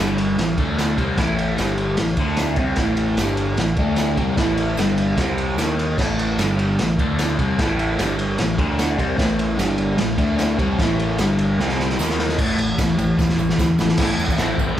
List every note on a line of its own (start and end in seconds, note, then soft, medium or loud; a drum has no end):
0.00 0.35 G1 loud
0.00 0.37 G2 loud
0.00 0.37 D3 loud
0.00 0.38 G3 loud
0.18 ride medium
0.38 0.56 A1 medium
0.38 0.54 A2 medium
0.38 0.54 E3 medium
0.38 snare loud
0.38 ride loud
0.57 0.95 D2 medium
0.57 0.97 D3 medium
0.57 0.98 A3 loud
0.57 0.98 D4 loud
0.57 kick loud
0.57 ride medium
0.78 snare loud
0.78 ride medium
0.78 tambourine medium
0.97 1.16 C2 medium
0.97 1.17 C3 loud
0.97 1.18 G3 medium
0.97 1.18 C4 loud
0.97 kick loud
0.97 ride medium
1.17 1.55 A1 medium
1.17 1.57 A2 loud
1.17 1.57 E3 loud
1.17 1.58 A3 loud
1.17 kick loud
1.17 snare loud
1.17 ride loud
1.39 ride medium
1.57 1.96 G1 loud
1.57 1.97 G2 loud
1.57 1.98 D3 loud
1.57 1.98 G3 loud
1.57 snare loud
1.57 ride loud
1.57 tambourine medium
1.78 ride medium
1.97 2.17 A1 medium
1.97 2.14 A2 medium
1.97 2.15 E3 medium
1.97 snare loud
1.97 ride loud
2.17 2.55 D2 medium
2.17 2.57 D3 medium
2.17 2.58 A3 loud
2.17 2.58 D4 loud
2.17 kick loud
2.17 ride medium
2.36 snare loud
2.36 ride medium
2.36 tambourine medium
2.56 2.76 C2 medium
2.56 2.77 C3 medium
2.56 2.78 G3 loud
2.56 2.78 C4 loud
2.56 kick loud
2.56 ride medium
2.76 3.15 A1 medium
2.76 3.18 A2 loud
2.76 3.18 E3 loud
2.76 kick loud
2.76 snare loud
2.76 ride medium
2.81 3.19 A3 loud
2.97 ride medium
3.17 3.55 G1 medium
3.17 3.58 G2 medium
3.17 3.58 D3 loud
3.17 3.59 G3 loud
3.17 snare loud
3.17 ride medium
3.17 tambourine medium
3.37 ride medium
3.57 3.76 A1 medium
3.57 3.74 A2 medium
3.57 3.75 E3 medium
3.57 snare loud
3.57 ride loud
3.76 4.15 D2 medium
3.76 4.18 D3 medium
3.76 4.18 A3 medium
3.76 4.18 D4 loud
3.76 kick loud
3.76 ride medium
3.96 snare loud
3.96 ride loud
3.96 tambourine medium
4.17 4.36 C2 loud
4.17 4.36 C3 medium
4.17 4.37 G3 loud
4.17 4.37 C4 loud
4.17 kick loud
4.17 ride medium
4.37 4.75 A1 medium
4.37 4.77 A2 medium
4.37 4.77 E3 loud
4.37 4.77 A3 loud
4.37 kick loud
4.37 snare loud
4.37 ride loud
4.57 ride medium
4.77 5.15 G1 medium
4.77 5.17 G2 medium
4.77 5.16 D3 medium
4.77 5.16 G3 loud
4.77 snare loud
4.77 ride loud
4.77 tambourine medium
4.98 ride medium
5.17 5.55 C2 medium
5.17 5.57 C3 medium
5.17 5.57 G3 loud
5.17 5.58 C4 loud
5.17 kick loud
5.17 snare loud
5.17 ride loud
5.38 ride medium
5.57 5.95 D#2 medium
5.57 5.98 D#3 medium
5.57 5.98 A#3 medium
5.57 5.98 D#4 loud
5.57 snare loud
5.57 ride loud
5.57 tambourine loud
5.79 ride medium
5.98 6.35 A1 loud
5.98 6.38 A2 loud
5.98 6.38 E3 loud
5.98 6.38 A3 loud
5.98 kick loud
5.98 snare loud
5.98 crash loud
6.19 ride medium
6.38 6.76 G1 loud
6.38 6.78 G2 medium
6.38 6.78 D3 loud
6.38 6.79 G3 loud
6.38 snare loud
6.38 ride loud
6.38 tambourine medium
6.59 ride medium
6.78 6.97 A1 medium
6.78 6.95 A2 medium
6.78 6.95 E3 medium
6.78 snare loud
6.78 ride loud
6.98 7.36 D2 medium
6.98 7.38 D3 medium
6.98 7.39 A3 medium
6.98 7.39 D4 medium
6.98 kick loud
6.98 ride medium
7.19 snare loud
7.19 ride medium
7.19 tambourine medium
7.39 7.57 C2 medium
7.39 7.58 C3 medium
7.39 7.59 G3 loud
7.39 7.59 C4 loud
7.39 kick loud
7.39 ride medium
7.58 7.96 A1 medium
7.58 7.99 A2 loud
7.58 8.00 E3 loud
7.58 8.00 A3 medium
7.58 kick loud
7.58 snare loud
7.58 ride loud
7.79 ride medium
7.98 8.36 G1 loud
7.98 8.38 G2 loud
7.98 8.38 D3 loud
7.98 8.39 G3 loud
7.98 snare loud
7.98 ride loud
7.98 tambourine medium
8.19 ride medium
8.38 8.57 A1 medium
8.38 8.55 A2 medium
8.38 8.55 E3 medium
8.38 snare loud
8.38 ride loud
8.58 8.96 D2 medium
8.58 8.98 D3 medium
8.58 8.98 A3 medium
8.58 8.99 D4 loud
8.58 kick loud
8.58 ride medium
8.79 snare loud
8.79 ride medium
8.79 tambourine medium
8.98 9.17 C2 loud
8.98 9.17 C3 loud
8.98 9.18 G3 loud
8.98 9.18 C4 loud
8.98 kick loud
8.98 ride medium
9.17 9.56 A1 loud
9.17 9.57 A2 loud
9.17 9.58 E3 loud
9.17 9.58 A3 loud
9.17 kick loud
9.17 snare loud
9.17 ride loud
9.39 ride medium
9.57 9.96 G1 loud
9.57 9.98 G2 medium
9.57 9.98 D3 loud
9.57 9.98 G3 loud
9.57 snare loud
9.57 ride loud
9.57 tambourine medium
9.78 ride medium
9.98 10.17 A1 medium
9.98 10.15 A2 medium
9.98 10.15 E3 medium
9.98 snare loud
9.98 ride loud
10.18 10.56 D2 medium
10.18 10.58 D3 medium
10.18 10.58 A3 medium
10.18 10.58 D4 medium
10.18 kick loud
10.18 ride medium
10.38 snare loud
10.38 ride medium
10.38 tambourine medium
10.58 10.77 C2 loud
10.58 10.78 C3 loud
10.58 10.79 G3 loud
10.58 10.79 C4 loud
10.58 kick loud
10.58 ride medium
10.78 11.16 A1 medium
10.78 11.18 A2 medium
10.78 11.19 E3 loud
10.78 11.19 A3 loud
10.78 kick loud
10.78 snare loud
10.78 ride medium
10.99 ride medium
11.18 11.56 G1 loud
11.18 11.58 G2 loud
11.18 11.59 D3 loud
11.18 11.59 G3 loud
11.18 snare loud
11.18 ride loud
11.18 tambourine medium
11.39 ride medium
11.58 11.96 C2 loud
11.58 11.98 C3 loud
11.58 11.99 G3 loud
11.58 11.99 C4 loud
11.58 snare medium
11.69 snare medium
11.79 snare medium
11.89 snare medium
11.98 12.36 D#2 loud
11.98 12.38 D#3 loud
11.98 12.39 A#3 loud
11.98 12.39 D#4 loud
11.98 snare medium
11.98 tambourine loud
12.10 snare medium
12.19 snare loud
12.29 snare medium
12.38 12.51 A1 medium
12.38 12.58 A2 loud
12.38 12.58 E3 medium
12.38 12.59 A3 loud
12.38 kick loud
12.38 crash loud
12.58 12.71 A1 medium
12.58 12.77 A2 medium
12.58 12.77 E3 medium
12.58 ride medium
12.58 tambourine soft
12.78 12.91 A1 loud
12.78 12.96 A2 medium
12.78 12.97 E3 loud
12.78 kick loud
12.78 snare loud
12.78 ride loud
12.78 tambourine medium
12.97 13.11 A1 medium
12.97 13.16 A2 medium
12.97 13.16 E3 medium
12.97 ride medium
12.97 tambourine medium
13.18 13.31 A1 medium
13.18 13.37 A2 medium
13.18 13.37 E3 loud
13.18 kick loud
13.18 snare medium
13.18 tambourine medium
13.29 snare medium
13.38 13.51 A1 medium
13.38 13.57 A2 medium
13.38 13.57 E3 medium
13.38 tambourine medium
13.49 snare medium
13.58 13.71 D2 medium
13.58 13.77 A2 medium
13.58 13.78 E3 medium
13.58 kick loud
13.58 snare medium
13.58 tambourine loud
13.78 13.91 A1 medium
13.78 13.97 A2 medium
13.78 13.98 E3 medium
13.78 snare loud
13.78 tambourine medium
13.89 snare loud
13.97 14.11 A1 loud
13.97 14.38 A2 medium
13.97 14.39 E3 loud
13.97 14.22 A3 loud
13.97 kick loud
13.97 snare loud
13.97 crash loud
13.97 crash medium
14.01 14.20 C4 loud
14.01 14.18 E4 loud
14.09 tambourine soft
14.18 14.31 E2 medium
14.18 14.40 A3 medium
14.18 14.41 C4 medium
14.18 14.42 E4 medium
14.18 tambourine medium
14.28 kick medium
14.28 tambourine medium
14.38 14.50 A1 medium
14.38 14.80 A2 medium
14.38 14.80 E3 medium
14.38 14.62 A3 loud
14.38 snare loud
14.38 tambourine medium
14.38 crash medium
14.42 14.60 C4 loud
14.42 14.58 E4 loud
14.58 14.71 A1 medium
14.58 14.80 C4 medium
14.58 14.80 E4 medium
14.58 kick medium
14.58 tambourine medium
14.62 14.80 A3 medium